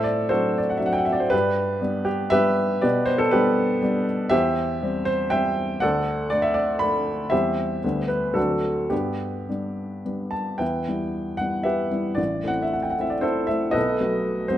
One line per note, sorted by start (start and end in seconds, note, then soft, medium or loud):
0.00 0.30 A2 medium
0.00 0.30 A4 medium
0.00 0.29 C5 medium
0.00 0.30 D5 medium
0.00 0.77 E5 medium
0.29 0.77 F#3 soft
0.29 0.78 C4 soft
0.29 0.78 D4 soft
0.29 0.59 F#4 medium
0.29 0.59 A4 medium
0.29 0.60 C5 medium
0.58 0.71 D5 medium
0.69 0.80 F#5 medium
0.77 1.27 F#3 soft
0.77 1.27 C4 soft
0.77 1.28 D4 soft
0.77 0.87 E5 medium
0.86 0.94 F#5 medium
0.93 1.00 G5 medium
0.98 1.06 F#5 medium
1.05 1.14 E5 medium
1.12 1.22 D5 medium
1.20 1.30 C5 medium
1.30 1.81 G2 medium
1.30 1.81 D4 medium
1.30 2.03 G4 medium
1.30 2.06 B4 loud
1.81 2.29 G3 soft
1.81 2.29 B3 soft
1.81 2.29 D4 medium
2.05 2.30 G4 medium
2.30 2.79 G3 soft
2.30 2.79 B3 soft
2.30 2.80 D4 medium
2.30 2.79 G4 medium
2.30 2.79 B4 medium
2.30 2.82 E5 loud
2.81 3.32 B2 medium
2.81 3.06 G4 medium
2.81 3.06 B4 medium
2.81 3.08 D5 medium
3.06 3.20 C5 medium
3.18 3.32 A4 medium
3.31 3.79 G3 medium
3.31 3.79 B3 medium
3.31 3.81 D4 medium
3.31 4.03 G4 medium
3.31 4.06 B4 medium
3.82 4.28 G3 soft
3.82 4.28 B3 soft
3.82 4.28 D4 medium
4.29 4.82 E2 medium
4.29 5.04 G4 medium
4.29 5.04 C5 medium
4.29 5.07 E5 loud
4.82 5.28 G3 medium
4.82 5.29 C4 medium
5.05 5.30 C5 medium
5.30 5.78 G3 soft
5.30 5.79 C4 medium
5.30 5.78 C5 medium
5.30 5.78 E5 medium
5.30 5.81 G5 medium
5.80 6.31 D2 medium
5.80 6.28 A4 medium
5.80 6.28 D5 medium
5.80 6.31 F#5 medium
6.30 6.77 A3 soft
6.30 6.77 D4 soft
6.30 6.43 D5 medium
6.42 6.55 E5 medium
6.54 6.80 D5 medium
6.79 7.28 A3 soft
6.79 7.28 D4 soft
6.79 7.31 B5 medium
7.30 7.82 E2 medium
7.30 7.79 G3 soft
7.30 7.80 C4 soft
7.30 8.05 G4 medium
7.30 8.05 C5 medium
7.30 8.08 E5 medium
7.84 8.34 D2 medium
7.84 8.32 G3 soft
7.84 8.33 B3 soft
7.84 8.33 D4 soft
8.08 8.35 B4 medium
8.34 8.89 D2 soft
8.34 8.87 F#3 soft
8.34 8.87 C4 soft
8.34 8.86 D4 medium
8.34 8.86 F#4 medium
8.34 8.90 A4 medium
8.90 9.47 G2 soft
8.90 9.48 B3 soft
8.90 9.48 D4 soft
8.90 10.33 G4 medium
9.49 10.02 G3 soft
9.49 10.02 B3 soft
9.49 10.02 D4 soft
10.05 10.57 G3 soft
10.05 10.57 B3 soft
10.05 10.57 D4 soft
10.31 10.59 A5 medium
10.58 10.86 E2 soft
10.58 11.35 B4 soft
10.58 11.35 E5 soft
10.58 11.38 G5 medium
10.88 11.36 G3 soft
10.88 11.36 B3 soft
10.88 11.36 E4 soft
11.37 11.88 G3 soft
11.37 11.88 B3 soft
11.37 11.88 E4 soft
11.37 11.64 F#5 medium
11.63 12.14 G4 medium
11.63 12.14 B4 medium
11.63 12.17 E5 medium
11.91 12.15 G3 soft
11.91 12.15 B3 soft
11.91 12.16 E4 soft
12.15 12.44 A1 soft
12.15 12.48 D5 medium
12.44 12.93 A3 soft
12.44 12.94 C4 soft
12.44 12.94 E4 soft
12.44 12.64 F#5 medium
12.62 12.75 E5 medium
12.73 12.84 F#5 medium
12.82 12.92 G5 medium
12.90 13.01 F#5 medium
12.98 13.46 A3 soft
12.98 13.46 C4 soft
12.98 13.21 E4 soft
12.98 13.12 E5 medium
13.10 13.23 D5 medium
13.21 13.47 E4 medium
13.21 13.47 A4 medium
13.21 13.48 C5 medium
13.47 13.72 A3 soft
13.47 13.72 C4 soft
13.47 13.73 E4 soft
13.47 13.74 E5 medium
13.71 13.99 B1 medium
13.71 14.46 A4 medium
13.71 14.46 B4 medium
13.71 14.49 D#5 medium
14.00 14.47 F#3 soft
14.00 14.47 A3 soft
14.00 14.47 B3 soft
14.48 14.58 F#3 soft
14.48 14.58 A3 soft
14.48 14.58 B3 soft
14.48 14.58 C5 medium